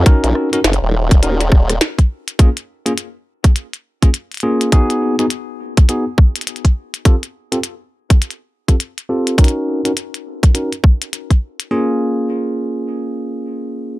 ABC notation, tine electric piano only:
X:1
M:4/4
L:1/16
Q:"Swing 16ths" 1/4=103
K:Bbphr
V:1 name="Tine electric piano"
[DEGB]3 [DEGB] z4 [DEGB] z6 z | [B,DFA] z2 [B,DFA] z6 z [B,DFA] z2 [B,DFA]2 | [CEGA]3 [CEGA] z4 [CEGA] z6 z | [=CF=G=A] z2 [CFGA] z6 z [CFGA] z2 [CFGA]2 |
[DEGB]3 [DEGB] z4 [DEGB] z6 z | [B,DFA]16 |]